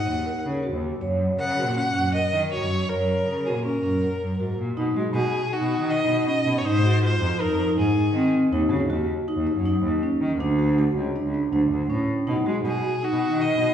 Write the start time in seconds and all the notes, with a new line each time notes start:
Already playing: F#5
0.07 D#2 D#4
0.26 A#4
0.45 C#3
0.63 F#4
0.73 D#2
1.01 F#2 C#5
1.39 C#3 A#4 F#5
1.58 F#4
1.67 A#2
1.76 C#4 F#5
1.95 F#2 C#4
2.14 A#4 D#5
2.34 D#3
2.52 F#4 C#5
2.61 F#2
2.89 F#2 A#4 C#5
3.27 C#3 A#4
3.45 F#4 G#4
3.54 A#2
3.65 C#4 A#4
3.83 F#2 C#4
4.02 A#4
4.21 F#2
4.40 G#2 F#4
4.58 A#2
4.77 B2 D#4
4.96 G#3 F#4
5.15 B2 F#4 G#4
5.53 D#4 F#4
5.61 B2
5.71 D#4
5.80 D#3
5.90 D#4 D#5
6.08 B2
6.27 C#4 D#5
6.46 B2
6.58 C#5
6.65 G#2 D#4 C5
7.02 F4 C5
7.21 F2
7.40 D#4 A#4
7.49 F2
7.77 G#2 D#4 G#4
7.96 G#2
8.15 D#3 C4
8.53 D#2 D#4
8.71 C#3 F#4
8.90 D#2 F#4
9.28 D#4
9.36 D#2
9.47 D#4
9.56 F#2
9.65 D#4
9.83 D#2
10.03 C#4
10.21 D#3
10.39 D2 D4
10.59 F#4
10.78 F#4
10.96 C#2
11.16 D4
11.24 C#2
11.34 D4
11.52 D2 D4
11.71 D2
11.90 A2 C#4
12.27 B2 D#4
12.46 G#3 F#4
12.65 B2 F#4 G#4
13.03 D#4 F#4
13.12 B2
13.22 D#4
13.31 D#3
13.41 D#4 D#5
13.59 B2